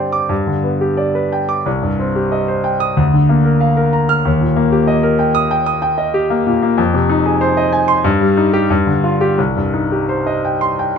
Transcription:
0.00 0.26 G2 medium
0.00 0.33 D3 soft
0.00 0.33 C4 soft
0.00 0.34 G4 soft
0.00 0.33 C5 soft
0.00 0.34 D5 medium
0.00 0.23 G5 soft
0.12 0.30 D6 medium
0.29 1.62 G2 medium
0.47 0.74 D3 soft
0.64 0.91 B3 soft
0.81 1.08 G4 soft
0.97 1.25 D5 soft
1.15 1.42 B4 soft
1.32 1.60 G5 medium
1.49 1.66 D6 medium
1.66 2.93 C2 medium
1.82 2.09 G2 soft
1.99 2.26 C4 soft
2.16 2.42 G4 soft
2.32 2.58 D#5 medium
2.48 2.74 C5 soft
2.64 2.91 G5 medium
2.80 2.97 D#6 medium
2.97 4.21 D2 medium
3.13 3.39 D3 soft
3.29 3.55 A#3 soft
3.45 3.71 A#4 soft
3.61 3.87 F5 medium
3.77 4.03 A#4 medium
3.93 4.19 A#5 medium
4.09 4.25 F6 medium
4.25 6.74 D#2 medium
4.41 4.66 A#2 soft
4.56 4.82 A#3 medium
4.72 4.98 G4 soft
4.87 5.13 D#5 medium
5.03 5.29 A#4 medium
5.19 5.45 G5 medium
5.35 5.60 D#6 medium
5.51 5.76 G5 medium
5.66 5.92 D#6 medium
5.82 6.08 G5 medium
5.98 6.24 D#5 medium
6.14 6.40 G4 medium
6.30 6.56 A#3 medium
6.47 6.72 A#2 medium
6.63 6.78 A#3 medium
6.78 8.00 F2 medium
6.94 7.19 C3 medium
7.09 7.34 D#4 medium
7.26 7.50 G#4 medium
7.41 7.66 C5 medium
7.57 7.82 D#5 medium
7.73 7.98 G#5 medium
7.88 8.04 C6 medium
8.04 8.68 G2 medium
8.20 8.47 G3 medium
8.37 8.63 D#4 medium
8.53 8.70 G4 medium
8.70 9.36 G2 medium
8.87 9.14 D3 medium
9.04 9.31 F4 medium
9.21 9.38 G4 medium
9.38 10.98 C2 medium
9.56 9.84 G2 soft
9.74 10.02 D#4 soft
9.92 10.20 G4 soft
10.09 10.37 C5 medium
10.27 10.55 D#5 medium
10.45 10.72 G5 medium
10.61 10.89 C6 medium
10.79 10.98 G5 medium

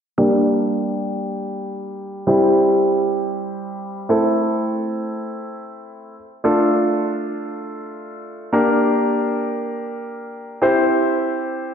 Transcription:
0.18 2.23 G3 medium
0.18 2.23 A#3 medium
0.18 2.23 D4 medium
0.18 2.23 G4 medium
2.27 4.06 G3 medium
2.27 4.06 C4 medium
2.27 4.06 E4 medium
2.27 4.06 G4 medium
4.09 6.14 A3 medium
4.09 6.14 C4 medium
4.09 6.14 E4 medium
4.09 6.15 A4 medium
6.44 8.49 A3 medium
6.44 8.49 D4 medium
6.44 8.49 F4 medium
6.44 8.49 A4 medium
8.53 10.58 A#3 medium
8.53 10.58 D4 medium
8.53 10.58 G4 medium
8.53 10.58 A#4 medium
10.62 11.74 C4 medium
10.62 11.74 E4 medium
10.62 11.74 G4 medium
10.62 11.74 C5 medium

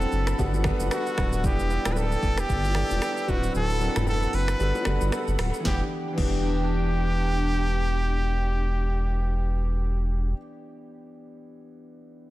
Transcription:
0.00 0.40 F#3 medium
0.00 0.38 C4 medium
0.00 0.41 C4 medium
0.00 0.39 D4 medium
0.00 0.40 E4 medium
0.00 0.55 A4 loud
0.00 0.41 B4 medium
0.00 0.37 C5 medium
0.00 0.37 F#5 medium
0.00 1.42 B5 medium
0.00 0.36 E6 medium
0.00 shaker medium
0.12 0.34 F#1 medium
0.12 shaker medium
0.27 finger snap medium
0.27 cross-stick loud
0.27 shaker loud
0.38 0.73 G1 loud
0.38 0.60 G3 loud
0.38 0.60 B3 medium
0.38 0.61 D4 medium
0.38 0.61 F#4 medium
0.38 1.43 A4 medium
0.38 0.61 A4 loud
0.38 1.43 F#5 medium
0.38 kick medium
0.38 high bongo medium
0.38 low conga medium
0.38 shaker medium
0.54 low bongo medium
0.54 shaker medium
0.64 1.22 G3 medium
0.64 1.23 B3 medium
0.64 1.23 D4 medium
0.64 1.23 F#4 medium
0.64 1.23 B4 loud
0.64 finger snap medium
0.64 kick loud
0.64 cross-stick loud
0.64 low conga medium
0.64 shaker medium
0.80 0.89 F#1 loud
0.80 low bongo medium
0.80 shaker loud
0.91 1.47 F#4 medium
0.91 finger snap medium
0.91 cross-stick loud
0.91 high bongo medium
0.91 shaker medium
1.07 shaker medium
1.18 1.45 D1 medium
1.18 finger snap medium
1.18 kick medium
1.18 cross-stick loud
1.18 low bongo medium
1.18 shaker medium
1.33 shaker medium
1.43 1.78 E1 loud
1.43 1.64 G3 medium
1.43 1.64 B3 medium
1.43 1.64 D4 medium
1.43 1.65 E4 medium
1.43 1.94 G4 loud
1.43 1.65 B4 medium
1.43 3.26 D5 medium
1.43 3.26 G5 medium
1.43 3.26 E6 medium
1.43 kick loud
1.43 low conga medium
1.43 shaker medium
1.59 shaker medium
1.69 2.46 G3 medium
1.69 2.47 B3 medium
1.69 2.47 D4 medium
1.69 2.47 E4 medium
1.69 2.48 B4 medium
1.69 shaker medium
1.85 2.16 D1 medium
1.85 finger snap medium
1.85 cross-stick loud
1.85 low bongo medium
1.85 shaker medium
1.92 2.00 B4 medium
1.96 2.41 A4 loud
1.96 high bongo medium
1.96 shaker medium
2.12 shaker medium
2.23 2.44 E1 loud
2.23 kick medium
2.23 shaker medium
2.38 3.31 G4 loud
2.38 finger snap medium
2.38 cross-stick loud
2.38 shaker loud
2.49 2.83 G1 loud
2.49 kick medium
2.49 high bongo medium
2.49 low conga medium
2.49 shaker medium
2.64 low bongo medium
2.64 shaker medium
2.74 3.28 G3 medium
2.74 3.28 B3 medium
2.74 3.27 D4 medium
2.74 3.27 E4 medium
2.74 3.29 A4 medium
2.74 finger snap medium
2.74 cross-stick loud
2.74 low conga medium
2.74 shaker medium
2.90 3.00 E1 loud
2.90 low bongo medium
2.90 shaker loud
3.02 finger snap medium
3.02 cross-stick loud
3.02 high bongo medium
3.02 shaker medium
3.17 shaker medium
3.27 3.50 D1 loud
3.27 3.71 F#3 medium
3.27 3.72 C4 medium
3.27 4.59 C4 medium
3.27 3.72 D4 medium
3.27 3.72 E4 medium
3.27 3.55 F#4 loud
3.27 3.73 B4 medium
3.27 4.59 F#5 medium
3.27 5.63 B5 medium
3.27 4.59 E6 loud
3.27 kick medium
3.27 low bongo medium
3.27 shaker medium
3.43 shaker medium
3.54 3.89 D1 loud
3.54 4.04 A4 loud
3.54 low conga medium
3.54 shaker medium
3.70 shaker medium
3.80 4.57 F#3 medium
3.80 4.57 C4 medium
3.80 4.57 D4 medium
3.80 4.58 E4 medium
3.80 3.89 A#4 medium
3.80 shaker medium
3.88 4.61 B4 medium
3.96 4.27 E1 loud
3.96 finger snap medium
3.96 cross-stick loud
3.96 mid tom medium
3.96 low bongo medium
3.96 shaker medium
4.07 4.36 A4 loud
4.07 high bongo loud
4.07 shaker medium
4.22 shaker medium
4.33 4.55 F#1 loud
4.33 5.13 B4 loud
4.33 open hi-hat medium
4.33 shaker medium
4.48 finger snap medium
4.48 cross-stick loud
4.48 shaker medium
4.59 4.72 G1 loud
4.59 4.81 G3 medium
4.59 4.81 B3 medium
4.59 4.82 D4 medium
4.59 4.82 F#4 medium
4.59 5.64 A4 medium
4.59 4.82 A4 medium
4.59 5.64 F#5 medium
4.59 low conga medium
4.59 shaker medium
4.75 low bongo medium
4.75 shaker medium
4.85 4.99 F#1 medium
4.85 5.43 G3 medium
4.85 5.44 B3 medium
4.85 5.44 D4 medium
4.85 5.44 F#4 medium
4.85 5.45 B4 medium
4.85 finger snap medium
4.85 cross-stick loud
4.85 low conga medium
4.85 shaker medium
5.01 5.10 G1 loud
5.01 low bongo medium
5.01 shaker loud
5.12 finger snap medium
5.12 cross-stick loud
5.12 high bongo medium
5.12 shaker medium
5.28 5.37 F#1 loud
5.28 high bongo medium
5.28 shaker medium
5.39 5.51 D1 loud
5.39 finger snap medium
5.39 cross-stick loud
5.39 open hi-hat medium
5.39 low bongo medium
5.39 shaker medium
5.54 shaker medium
5.60 5.79 E3 medium
5.60 5.80 B3 medium
5.65 5.81 E1 loud
5.65 9.81 E3 medium
5.65 9.81 D4 medium
5.65 5.82 D4 medium
5.65 5.82 G4 medium
5.65 9.81 G5 medium
5.65 kick loud
5.65 snare medium
5.65 low conga medium
5.70 5.84 G4 medium
6.13 10.28 E3 medium
6.13 10.32 B3 medium
6.18 10.33 E1 loud
6.18 10.35 D4 medium
6.18 10.34 G4 loud
6.18 kick loud
6.18 crash medium
6.18 low conga medium
6.23 10.38 G4 loud

